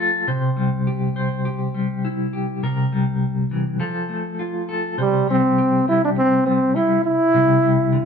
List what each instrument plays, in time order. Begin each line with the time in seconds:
Already playing: clean electric guitar F3 A3 F4
0.00 clean electric guitar A4
0.27 clean electric guitar C3 C5
0.56 clean electric guitar G3
0.87 clean electric guitar G4
1.16 clean electric guitar C5
1.45 clean electric guitar G4
1.74 clean electric guitar G3
2.05 clean electric guitar E4
2.33 clean electric guitar G4
2.63 clean electric guitar C3 A#4
2.92 clean electric guitar G3
3.51 clean electric guitar E3
3.80 clean electric guitar F3 A4
4.09 clean electric guitar A3
4.39 clean electric guitar F4
4.69 clean electric guitar A4
4.98 clean electric guitar C3 C5, trombone G3
5.28 clean electric guitar G3, trombone C4
5.58 clean electric guitar G4
5.88 clean electric guitar G3, trombone E4
6.05 trombone D4
6.16 trombone C4, muted clean electric guitar stroke
6.46 clean electric guitar G3, trombone C4
6.75 clean electric guitar G3, trombone E4
7.05 trombone E4, muted clean electric guitar stroke
7.34 clean electric guitar C3 G3
7.63 clean electric guitar G3
7.92 clean electric guitar D3